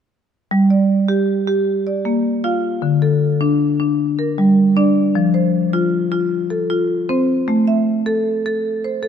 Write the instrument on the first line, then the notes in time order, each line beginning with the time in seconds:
marimba
0.51 G3
0.70 D5
1.08 G4
1.47 G4
1.87 D5
2.05 A#3
2.44 F4 F5
2.82 D3
3.02 A4
3.41 D4
3.80 D4
4.19 A#4
4.38 G3
4.77 D4 D5
5.15 F3
5.34 C5
5.73 F4
6.12 F4
6.50 A4
6.70 F4
7.09 C4 C5
7.48 A3
7.67 E5
8.06 A4
8.46 A4
8.84 C5
9.03 A4